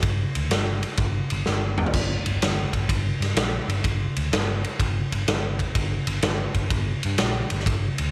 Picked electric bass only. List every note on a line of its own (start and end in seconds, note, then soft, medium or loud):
0.03 0.23 G1 loud
0.36 0.46 D2 medium
0.50 0.81 G1 medium
0.98 1.19 G1 medium
1.32 1.42 G1 medium
1.48 1.78 G1 medium
1.94 2.15 G1 medium
2.26 2.36 G1 medium
2.43 2.63 G1 loud
2.74 2.84 G1 medium
2.89 3.10 G1 loud
3.20 3.31 G2 loud
3.36 3.56 A#1 medium
3.68 3.79 G1 medium
3.85 4.05 G1 medium
4.17 4.27 D2 medium
4.32 4.62 G1 loud
4.80 5.00 G1 loud
5.12 5.22 G1 loud
5.28 5.59 G1 medium
5.75 5.96 G1 loud
6.07 6.17 G1 medium
6.23 6.44 G1 loud
6.55 6.65 G1 medium
6.71 6.91 G1 loud
7.05 7.15 G2 loud
7.20 7.40 A#1 medium
7.52 7.62 G1 medium
7.66 7.87 G1 medium
7.99 8.09 D2 medium